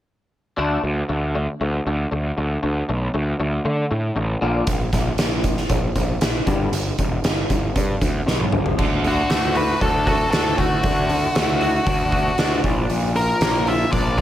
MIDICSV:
0, 0, Header, 1, 5, 480
1, 0, Start_track
1, 0, Key_signature, 2, "major"
1, 0, Tempo, 513259
1, 542, Time_signature, 4, 2, 24, 8
1, 13291, End_track
2, 0, Start_track
2, 0, Title_t, "Lead electric guitar"
2, 0, Program_c, 0, 29
2, 8487, Note_on_c, 0, 66, 70
2, 8920, Note_off_c, 0, 66, 0
2, 8949, Note_on_c, 0, 71, 81
2, 9178, Note_off_c, 0, 71, 0
2, 9182, Note_on_c, 0, 69, 80
2, 9415, Note_off_c, 0, 69, 0
2, 9426, Note_on_c, 0, 69, 77
2, 9632, Note_off_c, 0, 69, 0
2, 9643, Note_on_c, 0, 69, 74
2, 9892, Note_on_c, 0, 66, 67
2, 9898, Note_off_c, 0, 69, 0
2, 11782, Note_off_c, 0, 66, 0
2, 12308, Note_on_c, 0, 70, 76
2, 12794, Note_on_c, 0, 76, 82
2, 12802, Note_off_c, 0, 70, 0
2, 13014, Note_off_c, 0, 76, 0
2, 13019, Note_on_c, 0, 74, 85
2, 13255, Note_off_c, 0, 74, 0
2, 13291, End_track
3, 0, Start_track
3, 0, Title_t, "Clean electric guitar"
3, 0, Program_c, 1, 27
3, 531, Note_on_c, 1, 50, 66
3, 541, Note_on_c, 1, 57, 69
3, 547, Note_on_c, 1, 62, 72
3, 762, Note_off_c, 1, 50, 0
3, 767, Note_off_c, 1, 57, 0
3, 770, Note_off_c, 1, 62, 0
3, 782, Note_on_c, 1, 50, 53
3, 789, Note_on_c, 1, 57, 53
3, 997, Note_off_c, 1, 50, 0
3, 1001, Note_off_c, 1, 57, 0
3, 1022, Note_on_c, 1, 50, 56
3, 1022, Note_on_c, 1, 57, 63
3, 1237, Note_off_c, 1, 50, 0
3, 1237, Note_off_c, 1, 57, 0
3, 1261, Note_on_c, 1, 50, 52
3, 1266, Note_on_c, 1, 57, 58
3, 1476, Note_off_c, 1, 50, 0
3, 1479, Note_off_c, 1, 57, 0
3, 1505, Note_on_c, 1, 50, 52
3, 1506, Note_on_c, 1, 57, 64
3, 1718, Note_off_c, 1, 50, 0
3, 1718, Note_off_c, 1, 57, 0
3, 1746, Note_on_c, 1, 50, 51
3, 1751, Note_on_c, 1, 57, 63
3, 1958, Note_off_c, 1, 50, 0
3, 1961, Note_off_c, 1, 57, 0
3, 1980, Note_on_c, 1, 50, 50
3, 1986, Note_on_c, 1, 57, 57
3, 2195, Note_off_c, 1, 50, 0
3, 2198, Note_off_c, 1, 57, 0
3, 2223, Note_on_c, 1, 50, 53
3, 2223, Note_on_c, 1, 57, 55
3, 2436, Note_off_c, 1, 50, 0
3, 2436, Note_off_c, 1, 57, 0
3, 2459, Note_on_c, 1, 50, 55
3, 2460, Note_on_c, 1, 57, 61
3, 2674, Note_off_c, 1, 50, 0
3, 2675, Note_off_c, 1, 57, 0
3, 2702, Note_on_c, 1, 50, 53
3, 2705, Note_on_c, 1, 57, 62
3, 2915, Note_off_c, 1, 50, 0
3, 2917, Note_off_c, 1, 57, 0
3, 2936, Note_on_c, 1, 50, 59
3, 2941, Note_on_c, 1, 57, 63
3, 3153, Note_off_c, 1, 50, 0
3, 3155, Note_off_c, 1, 57, 0
3, 3176, Note_on_c, 1, 50, 58
3, 3181, Note_on_c, 1, 57, 63
3, 3392, Note_off_c, 1, 50, 0
3, 3395, Note_off_c, 1, 57, 0
3, 3416, Note_on_c, 1, 50, 60
3, 3419, Note_on_c, 1, 57, 63
3, 3632, Note_off_c, 1, 50, 0
3, 3634, Note_off_c, 1, 57, 0
3, 3654, Note_on_c, 1, 50, 48
3, 3658, Note_on_c, 1, 57, 60
3, 3871, Note_off_c, 1, 50, 0
3, 3873, Note_off_c, 1, 57, 0
3, 3888, Note_on_c, 1, 50, 62
3, 3895, Note_on_c, 1, 57, 64
3, 4108, Note_off_c, 1, 50, 0
3, 4111, Note_off_c, 1, 57, 0
3, 4127, Note_on_c, 1, 46, 74
3, 4137, Note_on_c, 1, 50, 76
3, 4144, Note_on_c, 1, 58, 81
3, 4357, Note_off_c, 1, 46, 0
3, 4362, Note_off_c, 1, 50, 0
3, 4365, Note_off_c, 1, 58, 0
3, 4375, Note_on_c, 1, 46, 58
3, 4377, Note_on_c, 1, 50, 58
3, 4591, Note_off_c, 1, 46, 0
3, 4592, Note_off_c, 1, 50, 0
3, 4614, Note_on_c, 1, 46, 53
3, 4615, Note_on_c, 1, 50, 58
3, 4830, Note_off_c, 1, 46, 0
3, 4831, Note_off_c, 1, 50, 0
3, 4852, Note_on_c, 1, 46, 60
3, 4855, Note_on_c, 1, 50, 66
3, 5069, Note_off_c, 1, 46, 0
3, 5071, Note_off_c, 1, 50, 0
3, 5092, Note_on_c, 1, 46, 53
3, 5092, Note_on_c, 1, 50, 56
3, 5309, Note_off_c, 1, 46, 0
3, 5309, Note_off_c, 1, 50, 0
3, 5327, Note_on_c, 1, 46, 62
3, 5329, Note_on_c, 1, 50, 63
3, 5546, Note_off_c, 1, 46, 0
3, 5548, Note_off_c, 1, 50, 0
3, 5571, Note_on_c, 1, 46, 55
3, 5572, Note_on_c, 1, 50, 64
3, 5789, Note_off_c, 1, 46, 0
3, 5789, Note_off_c, 1, 50, 0
3, 5812, Note_on_c, 1, 46, 61
3, 5816, Note_on_c, 1, 50, 65
3, 6029, Note_off_c, 1, 46, 0
3, 6031, Note_off_c, 1, 50, 0
3, 6050, Note_on_c, 1, 43, 80
3, 6057, Note_on_c, 1, 50, 80
3, 6064, Note_on_c, 1, 55, 76
3, 6278, Note_off_c, 1, 43, 0
3, 6281, Note_off_c, 1, 50, 0
3, 6285, Note_off_c, 1, 55, 0
3, 6291, Note_on_c, 1, 43, 56
3, 6296, Note_on_c, 1, 50, 65
3, 6509, Note_off_c, 1, 43, 0
3, 6511, Note_off_c, 1, 50, 0
3, 6541, Note_on_c, 1, 43, 55
3, 6545, Note_on_c, 1, 50, 64
3, 6754, Note_off_c, 1, 43, 0
3, 6756, Note_off_c, 1, 50, 0
3, 6780, Note_on_c, 1, 43, 57
3, 6782, Note_on_c, 1, 50, 59
3, 6993, Note_off_c, 1, 43, 0
3, 6994, Note_off_c, 1, 50, 0
3, 7021, Note_on_c, 1, 43, 58
3, 7021, Note_on_c, 1, 50, 61
3, 7234, Note_off_c, 1, 43, 0
3, 7234, Note_off_c, 1, 50, 0
3, 7254, Note_on_c, 1, 43, 57
3, 7258, Note_on_c, 1, 50, 71
3, 7470, Note_off_c, 1, 43, 0
3, 7472, Note_off_c, 1, 50, 0
3, 7495, Note_on_c, 1, 43, 56
3, 7497, Note_on_c, 1, 50, 65
3, 7711, Note_off_c, 1, 43, 0
3, 7712, Note_off_c, 1, 50, 0
3, 7730, Note_on_c, 1, 43, 57
3, 7735, Note_on_c, 1, 50, 65
3, 7949, Note_off_c, 1, 43, 0
3, 7951, Note_off_c, 1, 50, 0
3, 7972, Note_on_c, 1, 43, 58
3, 7974, Note_on_c, 1, 50, 57
3, 8190, Note_off_c, 1, 43, 0
3, 8191, Note_off_c, 1, 50, 0
3, 8214, Note_on_c, 1, 50, 59
3, 8443, Note_off_c, 1, 50, 0
3, 8454, Note_on_c, 1, 50, 53
3, 8690, Note_on_c, 1, 57, 57
3, 8930, Note_on_c, 1, 66, 60
3, 9172, Note_on_c, 1, 62, 55
3, 9402, Note_off_c, 1, 66, 0
3, 9413, Note_on_c, 1, 66, 65
3, 9649, Note_off_c, 1, 62, 0
3, 9652, Note_on_c, 1, 62, 58
3, 9657, Note_off_c, 1, 50, 0
3, 9883, Note_off_c, 1, 57, 0
3, 9894, Note_on_c, 1, 57, 60
3, 10132, Note_on_c, 1, 50, 55
3, 10357, Note_off_c, 1, 50, 0
3, 10369, Note_on_c, 1, 50, 59
3, 10600, Note_off_c, 1, 57, 0
3, 10611, Note_on_c, 1, 57, 53
3, 10618, Note_off_c, 1, 66, 0
3, 10852, Note_on_c, 1, 66, 65
3, 11090, Note_off_c, 1, 62, 0
3, 11094, Note_on_c, 1, 62, 58
3, 11324, Note_off_c, 1, 66, 0
3, 11335, Note_on_c, 1, 66, 60
3, 11577, Note_off_c, 1, 50, 0
3, 11581, Note_off_c, 1, 62, 0
3, 11585, Note_on_c, 1, 62, 60
3, 11818, Note_off_c, 1, 57, 0
3, 11820, Note_off_c, 1, 66, 0
3, 11822, Note_on_c, 1, 46, 61
3, 12055, Note_off_c, 1, 46, 0
3, 12066, Note_on_c, 1, 46, 59
3, 12304, Note_on_c, 1, 53, 53
3, 12548, Note_on_c, 1, 58, 56
3, 12788, Note_on_c, 1, 65, 65
3, 13023, Note_off_c, 1, 62, 0
3, 13026, Note_on_c, 1, 62, 58
3, 13250, Note_off_c, 1, 65, 0
3, 13261, Note_on_c, 1, 65, 62
3, 13267, Note_off_c, 1, 46, 0
3, 13291, Note_off_c, 1, 53, 0
3, 13291, Note_off_c, 1, 58, 0
3, 13291, Note_off_c, 1, 62, 0
3, 13291, Note_off_c, 1, 65, 0
3, 13291, End_track
4, 0, Start_track
4, 0, Title_t, "Picked electric bass"
4, 0, Program_c, 2, 34
4, 545, Note_on_c, 2, 38, 73
4, 716, Note_off_c, 2, 38, 0
4, 781, Note_on_c, 2, 38, 73
4, 953, Note_off_c, 2, 38, 0
4, 1024, Note_on_c, 2, 38, 70
4, 1366, Note_off_c, 2, 38, 0
4, 1504, Note_on_c, 2, 38, 72
4, 1674, Note_off_c, 2, 38, 0
4, 1745, Note_on_c, 2, 38, 70
4, 1915, Note_off_c, 2, 38, 0
4, 1983, Note_on_c, 2, 38, 72
4, 2153, Note_off_c, 2, 38, 0
4, 2225, Note_on_c, 2, 38, 69
4, 2394, Note_off_c, 2, 38, 0
4, 2464, Note_on_c, 2, 38, 74
4, 2634, Note_off_c, 2, 38, 0
4, 2705, Note_on_c, 2, 35, 74
4, 2874, Note_off_c, 2, 35, 0
4, 2939, Note_on_c, 2, 38, 73
4, 3110, Note_off_c, 2, 38, 0
4, 3175, Note_on_c, 2, 38, 70
4, 3348, Note_off_c, 2, 38, 0
4, 3413, Note_on_c, 2, 50, 74
4, 3586, Note_off_c, 2, 50, 0
4, 3660, Note_on_c, 2, 45, 77
4, 3830, Note_off_c, 2, 45, 0
4, 3891, Note_on_c, 2, 33, 75
4, 4064, Note_off_c, 2, 33, 0
4, 4135, Note_on_c, 2, 34, 68
4, 4307, Note_off_c, 2, 34, 0
4, 4367, Note_on_c, 2, 34, 78
4, 4542, Note_off_c, 2, 34, 0
4, 4609, Note_on_c, 2, 34, 73
4, 4783, Note_off_c, 2, 34, 0
4, 4852, Note_on_c, 2, 34, 73
4, 5197, Note_off_c, 2, 34, 0
4, 5328, Note_on_c, 2, 34, 76
4, 5502, Note_off_c, 2, 34, 0
4, 5569, Note_on_c, 2, 34, 76
4, 5743, Note_off_c, 2, 34, 0
4, 5808, Note_on_c, 2, 34, 75
4, 5982, Note_off_c, 2, 34, 0
4, 6049, Note_on_c, 2, 31, 74
4, 6223, Note_off_c, 2, 31, 0
4, 6285, Note_on_c, 2, 31, 82
4, 6460, Note_off_c, 2, 31, 0
4, 6534, Note_on_c, 2, 28, 73
4, 6706, Note_off_c, 2, 28, 0
4, 6772, Note_on_c, 2, 31, 72
4, 6945, Note_off_c, 2, 31, 0
4, 7015, Note_on_c, 2, 31, 79
4, 7187, Note_off_c, 2, 31, 0
4, 7255, Note_on_c, 2, 43, 77
4, 7427, Note_off_c, 2, 43, 0
4, 7497, Note_on_c, 2, 38, 72
4, 7668, Note_off_c, 2, 38, 0
4, 7735, Note_on_c, 2, 35, 76
4, 7907, Note_off_c, 2, 35, 0
4, 7978, Note_on_c, 2, 31, 77
4, 8149, Note_off_c, 2, 31, 0
4, 8218, Note_on_c, 2, 38, 74
4, 8611, Note_off_c, 2, 38, 0
4, 8701, Note_on_c, 2, 38, 73
4, 9094, Note_off_c, 2, 38, 0
4, 9176, Note_on_c, 2, 38, 71
4, 9571, Note_off_c, 2, 38, 0
4, 9661, Note_on_c, 2, 38, 73
4, 9857, Note_off_c, 2, 38, 0
4, 9894, Note_on_c, 2, 38, 73
4, 10093, Note_off_c, 2, 38, 0
4, 10133, Note_on_c, 2, 38, 83
4, 10530, Note_off_c, 2, 38, 0
4, 10622, Note_on_c, 2, 38, 71
4, 11016, Note_off_c, 2, 38, 0
4, 11099, Note_on_c, 2, 38, 77
4, 11495, Note_off_c, 2, 38, 0
4, 11578, Note_on_c, 2, 38, 71
4, 11777, Note_off_c, 2, 38, 0
4, 11818, Note_on_c, 2, 34, 73
4, 12017, Note_off_c, 2, 34, 0
4, 12062, Note_on_c, 2, 34, 77
4, 12457, Note_off_c, 2, 34, 0
4, 12539, Note_on_c, 2, 34, 74
4, 12936, Note_off_c, 2, 34, 0
4, 13024, Note_on_c, 2, 34, 78
4, 13291, Note_off_c, 2, 34, 0
4, 13291, End_track
5, 0, Start_track
5, 0, Title_t, "Drums"
5, 4366, Note_on_c, 9, 42, 67
5, 4369, Note_on_c, 9, 36, 83
5, 4460, Note_off_c, 9, 42, 0
5, 4463, Note_off_c, 9, 36, 0
5, 4607, Note_on_c, 9, 42, 49
5, 4608, Note_on_c, 9, 36, 67
5, 4615, Note_on_c, 9, 38, 25
5, 4701, Note_off_c, 9, 42, 0
5, 4702, Note_off_c, 9, 36, 0
5, 4708, Note_off_c, 9, 38, 0
5, 4845, Note_on_c, 9, 42, 67
5, 4852, Note_on_c, 9, 38, 88
5, 4938, Note_off_c, 9, 42, 0
5, 4946, Note_off_c, 9, 38, 0
5, 5086, Note_on_c, 9, 42, 51
5, 5088, Note_on_c, 9, 36, 70
5, 5179, Note_off_c, 9, 42, 0
5, 5182, Note_off_c, 9, 36, 0
5, 5214, Note_on_c, 9, 38, 27
5, 5307, Note_off_c, 9, 38, 0
5, 5326, Note_on_c, 9, 42, 64
5, 5328, Note_on_c, 9, 36, 84
5, 5419, Note_off_c, 9, 42, 0
5, 5422, Note_off_c, 9, 36, 0
5, 5570, Note_on_c, 9, 36, 66
5, 5572, Note_on_c, 9, 42, 55
5, 5663, Note_off_c, 9, 36, 0
5, 5665, Note_off_c, 9, 42, 0
5, 5809, Note_on_c, 9, 42, 79
5, 5816, Note_on_c, 9, 38, 100
5, 5902, Note_off_c, 9, 42, 0
5, 5910, Note_off_c, 9, 38, 0
5, 6050, Note_on_c, 9, 42, 54
5, 6051, Note_on_c, 9, 36, 86
5, 6144, Note_off_c, 9, 36, 0
5, 6144, Note_off_c, 9, 42, 0
5, 6293, Note_on_c, 9, 42, 73
5, 6386, Note_off_c, 9, 42, 0
5, 6532, Note_on_c, 9, 42, 55
5, 6534, Note_on_c, 9, 36, 70
5, 6626, Note_off_c, 9, 42, 0
5, 6628, Note_off_c, 9, 36, 0
5, 6770, Note_on_c, 9, 42, 70
5, 6778, Note_on_c, 9, 38, 89
5, 6864, Note_off_c, 9, 42, 0
5, 6871, Note_off_c, 9, 38, 0
5, 7013, Note_on_c, 9, 42, 53
5, 7015, Note_on_c, 9, 36, 76
5, 7106, Note_off_c, 9, 42, 0
5, 7108, Note_off_c, 9, 36, 0
5, 7254, Note_on_c, 9, 42, 68
5, 7255, Note_on_c, 9, 36, 81
5, 7348, Note_off_c, 9, 42, 0
5, 7349, Note_off_c, 9, 36, 0
5, 7495, Note_on_c, 9, 36, 68
5, 7495, Note_on_c, 9, 42, 54
5, 7589, Note_off_c, 9, 36, 0
5, 7589, Note_off_c, 9, 42, 0
5, 7744, Note_on_c, 9, 38, 50
5, 7837, Note_off_c, 9, 38, 0
5, 7855, Note_on_c, 9, 48, 51
5, 7949, Note_off_c, 9, 48, 0
5, 7972, Note_on_c, 9, 45, 62
5, 8065, Note_off_c, 9, 45, 0
5, 8096, Note_on_c, 9, 43, 65
5, 8190, Note_off_c, 9, 43, 0
5, 8217, Note_on_c, 9, 49, 70
5, 8218, Note_on_c, 9, 36, 89
5, 8310, Note_off_c, 9, 49, 0
5, 8312, Note_off_c, 9, 36, 0
5, 8458, Note_on_c, 9, 46, 42
5, 8551, Note_off_c, 9, 46, 0
5, 8696, Note_on_c, 9, 46, 60
5, 8704, Note_on_c, 9, 38, 89
5, 8790, Note_off_c, 9, 46, 0
5, 8797, Note_off_c, 9, 38, 0
5, 8933, Note_on_c, 9, 46, 45
5, 9027, Note_off_c, 9, 46, 0
5, 9178, Note_on_c, 9, 36, 84
5, 9179, Note_on_c, 9, 46, 54
5, 9271, Note_off_c, 9, 36, 0
5, 9273, Note_off_c, 9, 46, 0
5, 9417, Note_on_c, 9, 36, 71
5, 9418, Note_on_c, 9, 46, 45
5, 9511, Note_off_c, 9, 36, 0
5, 9511, Note_off_c, 9, 46, 0
5, 9656, Note_on_c, 9, 46, 62
5, 9664, Note_on_c, 9, 38, 97
5, 9750, Note_off_c, 9, 46, 0
5, 9757, Note_off_c, 9, 38, 0
5, 9895, Note_on_c, 9, 46, 41
5, 9896, Note_on_c, 9, 36, 67
5, 9988, Note_off_c, 9, 46, 0
5, 9989, Note_off_c, 9, 36, 0
5, 10131, Note_on_c, 9, 46, 57
5, 10135, Note_on_c, 9, 36, 86
5, 10225, Note_off_c, 9, 46, 0
5, 10229, Note_off_c, 9, 36, 0
5, 10376, Note_on_c, 9, 46, 43
5, 10469, Note_off_c, 9, 46, 0
5, 10617, Note_on_c, 9, 46, 55
5, 10625, Note_on_c, 9, 38, 93
5, 10711, Note_off_c, 9, 46, 0
5, 10718, Note_off_c, 9, 38, 0
5, 10856, Note_on_c, 9, 46, 43
5, 10949, Note_off_c, 9, 46, 0
5, 11095, Note_on_c, 9, 46, 54
5, 11097, Note_on_c, 9, 36, 93
5, 11189, Note_off_c, 9, 46, 0
5, 11191, Note_off_c, 9, 36, 0
5, 11338, Note_on_c, 9, 36, 72
5, 11338, Note_on_c, 9, 46, 40
5, 11431, Note_off_c, 9, 36, 0
5, 11431, Note_off_c, 9, 46, 0
5, 11578, Note_on_c, 9, 46, 61
5, 11585, Note_on_c, 9, 38, 96
5, 11671, Note_off_c, 9, 46, 0
5, 11679, Note_off_c, 9, 38, 0
5, 11820, Note_on_c, 9, 36, 83
5, 11821, Note_on_c, 9, 46, 42
5, 11914, Note_off_c, 9, 36, 0
5, 11914, Note_off_c, 9, 46, 0
5, 12060, Note_on_c, 9, 46, 49
5, 12154, Note_off_c, 9, 46, 0
5, 12304, Note_on_c, 9, 46, 38
5, 12398, Note_off_c, 9, 46, 0
5, 12541, Note_on_c, 9, 46, 60
5, 12549, Note_on_c, 9, 38, 91
5, 12635, Note_off_c, 9, 46, 0
5, 12642, Note_off_c, 9, 38, 0
5, 12784, Note_on_c, 9, 46, 43
5, 12878, Note_off_c, 9, 46, 0
5, 13024, Note_on_c, 9, 36, 87
5, 13028, Note_on_c, 9, 46, 56
5, 13118, Note_off_c, 9, 36, 0
5, 13121, Note_off_c, 9, 46, 0
5, 13291, End_track
0, 0, End_of_file